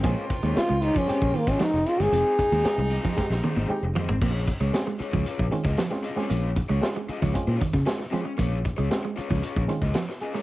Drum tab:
CC |----------------|----------------|x---------------|----------------|
HH |x-xxx-xxx-o-x-x-|x-xxx-xx--------|--xxx-x-x-x-x-x-|x-xxx-xxx-x-x-x-|
SD |----o--o---ooo-o|----o--ooo------|----o--o---ooo-o|----o--o---ooo--|
T1 |----------------|----------oo----|----------------|----------------|
FT |----------------|--------------oo|----------------|----------------|
BD |o-o----o-o-o----|--o----oo-------|o-o----o-o-o----|--o----oo-oo----|

CC |----------------|
HH |x-xxx-xxx-x-x-x-|
SD |----o--o---ooo-o|
T1 |----------------|
FT |----------------|
BD |o-o----o-o-o----|